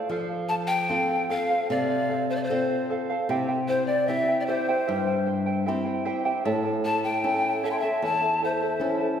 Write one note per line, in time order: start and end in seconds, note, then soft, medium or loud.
0.09 0.87 F3 medium
0.09 0.30 A4 medium
0.09 0.30 C5 medium
0.09 0.29 F5 loud
0.30 0.50 C5 soft
0.30 0.50 F5 medium
0.49 0.70 A4 medium
0.49 0.70 C5 medium
0.49 0.68 F5 medium
0.49 0.55 A5 loud
0.49 0.55 A5 medium
0.67 0.89 C5 soft
0.67 0.90 F5 medium
0.67 1.24 G5 loud
0.67 1.26 G5 medium
0.89 1.53 C4 medium
0.89 1.53 F4 soft
0.89 1.10 A4 medium
0.89 1.54 A4 medium
0.89 1.10 C5 medium
0.89 1.09 F5 medium
1.10 1.29 C5 soft
1.10 1.29 F5 medium
1.30 1.50 A4 medium
1.30 1.49 C5 medium
1.30 1.67 F5 medium
1.30 1.49 F5 loud
1.30 1.67 F5 loud
1.50 1.68 A4 medium
1.50 1.69 C5 medium
1.50 1.70 F5 medium
1.70 2.47 C3 medium
1.70 1.89 A4 medium
1.70 1.90 C5 medium
1.70 2.26 D5 loud
1.70 2.25 F5 medium
1.70 1.89 F5 medium
1.90 2.08 C5 soft
1.90 2.09 F5 medium
2.09 2.29 A4 medium
2.09 2.29 C5 medium
2.09 2.28 F5 medium
2.30 2.39 C5 medium
2.30 2.37 C5 medium
2.30 2.49 C5 soft
2.30 2.49 F5 medium
2.35 2.45 D5 medium
2.35 2.46 D5 medium
2.44 2.89 C5 medium
2.44 2.90 C5 medium
2.50 3.13 C4 medium
2.50 3.13 F4 medium
2.50 2.69 A4 medium
2.50 3.14 A4 medium
2.50 2.70 C5 medium
2.50 2.69 F5 medium
2.70 2.90 C5 soft
2.70 2.90 F5 medium
2.90 3.09 A4 medium
2.90 3.09 C5 medium
2.90 3.08 F5 medium
3.10 3.30 A4 medium
3.10 3.29 C5 medium
3.10 3.29 F5 medium
3.29 4.06 C3 medium
3.29 3.48 E4 loud
3.29 3.49 G4 medium
3.29 3.48 C5 medium
3.29 3.49 E5 medium
3.29 3.47 G5 loud
3.49 3.68 E4 soft
3.49 3.68 C5 medium
3.49 3.68 G5 medium
3.68 3.88 E4 medium
3.68 3.85 C5 medium
3.68 3.87 C5 medium
3.68 3.88 C5 medium
3.68 3.88 E5 medium
3.68 3.87 G5 medium
3.86 4.08 E4 soft
3.86 4.08 C5 medium
3.86 4.09 D5 loud
3.86 4.10 D5 medium
3.86 4.08 G5 medium
4.07 4.72 C4 medium
4.07 4.28 E4 medium
4.07 4.72 E4 soft
4.07 4.72 G4 medium
4.07 4.28 C5 medium
4.07 4.42 E5 loud
4.07 4.28 E5 medium
4.07 4.42 E5 medium
4.07 4.27 G5 medium
4.28 4.47 E4 medium
4.28 4.48 C5 soft
4.28 4.48 G5 medium
4.40 4.48 D5 medium
4.40 4.51 E5 medium
4.46 4.68 E4 loud
4.46 4.68 G4 medium
4.46 5.26 C5 medium
4.46 4.68 C5 medium
4.46 5.28 C5 medium
4.46 4.68 E5 medium
4.46 4.67 G5 medium
4.68 4.87 E4 medium
4.68 4.86 G4 medium
4.68 4.87 C5 medium
4.68 4.86 E5 medium
4.68 4.87 G5 medium
4.87 5.65 G2 medium
4.87 5.07 E4 medium
4.87 5.07 G4 medium
4.87 5.06 C5 medium
4.87 5.07 E5 medium
4.87 5.06 G5 medium
5.07 5.25 E4 soft
5.07 5.25 C5 soft
5.07 5.26 G5 medium
5.26 5.47 E4 medium
5.26 5.46 C5 medium
5.26 5.46 E5 medium
5.26 5.45 G5 medium
5.46 5.65 E4 soft
5.46 5.65 C5 medium
5.46 5.66 G5 medium
5.66 6.31 C4 medium
5.66 5.86 E4 medium
5.66 6.31 E4 medium
5.66 6.31 G4 medium
5.66 5.85 C5 medium
5.66 5.86 E5 medium
5.66 5.84 G5 medium
5.85 6.04 E4 medium
5.85 6.04 C5 medium
5.85 6.05 G5 medium
6.05 6.24 E4 medium
6.05 6.25 G4 medium
6.05 6.24 C5 loud
6.05 6.25 E5 medium
6.05 6.24 G5 loud
6.25 6.44 E4 medium
6.25 6.45 G4 medium
6.25 6.45 C5 medium
6.25 6.44 E5 medium
6.25 6.45 G5 medium
6.45 7.22 A2 medium
6.45 6.65 E4 loud
6.45 6.64 A4 loud
6.45 6.65 C#5 loud
6.45 6.65 E5 medium
6.45 6.63 A5 loud
6.64 6.83 E4 soft
6.64 6.84 A4 medium
6.64 6.84 A5 medium
6.85 7.04 E4 medium
6.85 7.04 A4 medium
6.85 7.04 E5 medium
6.85 7.03 A5 loud
6.85 7.03 A5 medium
6.85 7.04 A5 medium
7.04 7.23 E4 medium
7.04 7.24 A4 medium
7.04 7.67 G5 loud
7.04 7.68 G5 medium
7.04 7.24 A5 medium
7.24 7.87 C#4 medium
7.24 7.87 E4 soft
7.24 7.44 E4 medium
7.24 7.87 A4 medium
7.24 7.44 A4 medium
7.24 7.44 E5 medium
7.24 7.43 A5 medium
7.45 7.63 E4 soft
7.45 7.63 A4 medium
7.45 7.63 A5 medium
7.63 7.82 E4 medium
7.63 7.82 A4 medium
7.63 7.83 C#5 medium
7.63 7.82 E5 loud
7.63 7.72 E5 medium
7.63 7.81 A5 medium
7.71 7.81 G5 medium
7.71 7.80 C6 medium
7.79 8.07 E5 medium
7.79 8.06 E5 loud
7.79 8.02 A5 medium
7.83 8.02 E4 medium
7.83 8.02 A4 medium
7.83 8.01 C#5 medium
7.83 8.02 E5 medium
8.02 8.79 E2 medium
8.02 8.23 E4 medium
8.02 8.21 A4 medium
8.02 8.22 C#5 medium
8.02 8.23 E5 medium
8.02 8.20 A5 medium
8.02 8.46 A5 loud
8.02 8.46 A5 medium
8.22 8.41 E4 soft
8.22 8.41 A4 soft
8.22 8.41 A5 medium
8.41 8.62 E4 medium
8.41 8.61 A4 medium
8.41 9.20 C5 medium
8.41 8.61 E5 medium
8.41 9.20 E5 medium
8.41 8.60 A5 medium
8.61 8.80 E4 medium
8.61 8.81 A4 medium
8.61 8.81 A5 medium
8.80 9.20 C#4 medium
8.80 9.20 E4 medium
8.80 9.01 E4 medium
8.80 9.20 A4 medium
8.80 9.00 A4 medium
8.80 9.01 E5 medium
8.80 8.99 A5 medium
9.01 9.20 E4 soft
9.01 9.20 A4 medium
9.01 9.20 A5 medium